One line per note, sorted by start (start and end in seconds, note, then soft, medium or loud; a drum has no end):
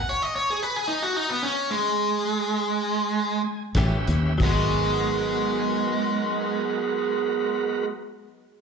0.09 0.22 C#5 medium
0.22 0.33 D#5 medium
0.36 0.48 C#5 medium
0.50 0.62 G#4 loud
0.62 0.76 B4 medium
0.76 0.87 G#4 medium
0.88 1.02 D#4 medium
1.02 1.16 F#4 medium
1.16 1.29 D#4 medium
1.30 1.41 B3 medium
1.43 1.69 C#4 medium
1.71 3.42 G#3 loud
3.44 3.63 G#5 medium
3.75 3.91 A1 medium
3.75 3.96 E3 medium
3.75 3.97 A3 medium
3.75 4.33 C#4 medium
3.75 3.97 C#4 loud
3.75 4.33 G4 medium
3.75 3.97 G4 loud
3.75 4.33 B4 loud
3.75 4.36 E5 medium
3.75 kick medium
3.75 snare loud
3.75 closed hi-hat medium
3.75 tambourine loud
4.07 4.37 D#2 medium
4.07 closed hi-hat medium
4.38 7.86 G#1 medium
4.38 7.88 F#3 medium
4.38 7.87 G#3 medium
4.38 7.86 B3 medium
4.38 7.92 B3 medium
4.38 7.86 F#4 medium
4.38 7.86 A#4 medium
4.38 kick loud
4.38 crash medium
4.45 7.95 D#4 medium
4.45 7.97 F#4 medium